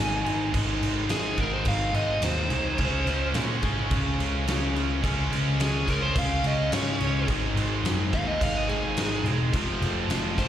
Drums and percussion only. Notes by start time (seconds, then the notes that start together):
0.26 crash
0.54 kick, crash
0.83 crash
1.09 snare, crash
1.38 kick, crash
1.65 kick, crash
1.94 crash
2.22 snare, crash
2.50 crash
2.78 kick, crash
3.07 crash
3.34 snare, crash
3.63 kick, crash
3.91 kick, crash
4.20 crash
4.48 snare, crash
4.76 crash
5.04 kick, crash
5.33 crash
5.60 snare, crash
5.88 kick, crash
6.15 kick, crash
6.44 crash
6.72 snare, crash
7.00 crash
7.28 kick, crash
7.57 crash
7.85 snare, crash
8.13 kick, crash
8.41 kick, crash
8.69 crash
8.97 snare, crash
9.26 crash
9.54 kick, crash
9.82 crash
10.10 snare, crash
10.38 kick, crash